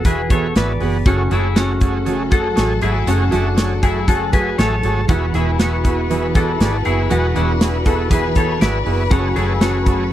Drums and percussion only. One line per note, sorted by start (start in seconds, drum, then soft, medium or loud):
0.05 kick medium
0.05 closed hi-hat loud
0.30 kick medium
0.30 closed hi-hat medium
0.56 snare loud
0.56 closed hi-hat medium
0.80 open hi-hat medium
1.06 kick loud
1.06 closed hi-hat medium
1.31 closed hi-hat medium
1.56 snare loud
1.56 closed hi-hat loud
1.81 kick medium
1.81 closed hi-hat medium
2.06 closed hi-hat medium
2.31 kick medium
2.31 closed hi-hat medium
2.57 snare loud
2.57 closed hi-hat medium
2.82 closed hi-hat medium
3.07 closed hi-hat medium
3.32 closed hi-hat medium
3.58 snare loud
3.58 closed hi-hat loud
3.83 kick medium
3.83 closed hi-hat medium
4.08 kick medium
4.08 closed hi-hat medium
4.33 kick medium
4.33 closed hi-hat medium
4.59 snare loud
4.59 closed hi-hat medium
4.83 closed hi-hat medium
5.09 kick loud
5.09 closed hi-hat medium
5.34 closed hi-hat medium
5.59 snare loud
5.59 closed hi-hat loud
5.85 kick medium
5.85 closed hi-hat medium
6.11 closed hi-hat medium
6.35 kick medium
6.35 closed hi-hat medium
6.60 snare loud
6.60 closed hi-hat medium
6.85 closed hi-hat medium
7.11 closed hi-hat medium
7.36 closed hi-hat medium
7.61 snare loud
7.61 closed hi-hat loud
7.86 kick medium
7.86 closed hi-hat medium
8.11 kick loud
8.11 closed hi-hat medium
8.35 kick medium
8.35 closed hi-hat medium
8.61 snare loud
8.61 closed hi-hat medium
8.86 open hi-hat medium
9.11 kick loud
9.11 closed hi-hat medium
9.36 closed hi-hat medium
9.61 snare loud
9.61 closed hi-hat loud
9.86 kick medium
9.86 closed hi-hat medium